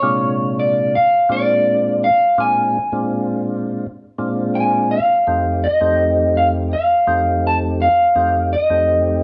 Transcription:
Already playing: C#5
0.02 A#2 C3 G#3 D4 F4
0.60 D5
0.95 F5
1.29 A#2 G#3 C4 D4 F4 D5
2.04 F5
2.38 A#2 G#3 C4 D4 F4 G#5
2.92 A#2 G#3 C4 D4 F4
4.18 A#2 G#3 C4 D4 F4
4.55 G#5
4.91 F5
5.27 F2 A3 C4 D#4 G4
5.64 D#5
5.81 F2 A3 C4 D#4 G4
6.37 F5
6.73 F5
7.07 F2 A3 C4 D#4 G4
7.47 A5
7.82 F5
8.15 F2 A3 C4 D#4 G4
8.53 D#5
8.70 F2 A3 C4 D#4 G4

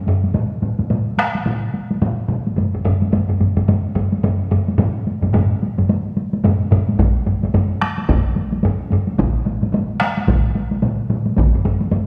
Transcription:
0.07 taiko low-mid, taiko high
0.24 taiko high
0.34 taiko mid, taiko high
0.62 taiko mid, taiko high
0.79 taiko mid, taiko high
0.90 taiko mid, taiko high
1.18 taiko rim, taiko high
1.35 taiko high
1.46 taiko mid, taiko high
1.74 taiko high
1.91 taiko high
2.02 taiko mid, taiko high
2.28 taiko mid, taiko high
2.47 taiko high
2.57 taiko low-mid, taiko high
2.74 taiko low-mid
2.85 taiko low-mid, taiko high
3.02 taiko high
3.12 taiko low-mid, taiko high
3.29 taiko low-mid
3.41 taiko low-mid, taiko high
3.57 taiko low-mid, taiko high
3.68 taiko low-mid, taiko high
3.95 taiko low-mid, taiko high
4.12 taiko high
4.23 taiko low-mid, taiko high
4.51 taiko low-mid, taiko high
4.68 taiko high
4.78 taiko low-mid, taiko mid, taiko high
5.07 taiko high
5.23 taiko low-mid, taiko mid, taiko high
5.33 taiko low-mid, taiko mid, taiko high
5.63 taiko high
5.78 taiko low-mid, taiko mid, taiko high
5.89 taiko high
6.17 taiko high
6.33 taiko high
6.44 taiko low-mid, taiko mid, taiko high
6.71 taiko low-mid, taiko mid, taiko high
6.89 taiko high
6.99 taiko, taiko low-mid, taiko high
7.26 taiko low-mid, taiko high
7.43 taiko low-mid, taiko high
7.54 taiko low-mid, taiko high
7.82 taiko rim, taiko high
7.98 taiko high
8.09 taiko, taiko low-mid, taiko high
8.36 taiko high
8.52 taiko high
8.63 taiko low-mid, taiko high
8.90 taiko low-mid, taiko high
9.07 taiko high
9.18 taiko, taiko mid, taiko high
9.46 taiko mid, taiko high
9.62 taiko mid, taiko high
9.72 taiko mid, taiko high
10.00 taiko rim, taiko high
10.17 taiko high
10.27 taiko, taiko mid, taiko high
10.55 taiko high
10.71 taiko high
10.82 taiko mid, taiko high
11.10 taiko mid, taiko high
11.26 taiko high
11.37 taiko, taiko low-mid, taiko high
11.54 taiko low-mid
11.65 taiko low-mid, taiko high
11.81 taiko high
11.91 taiko low-mid, taiko high

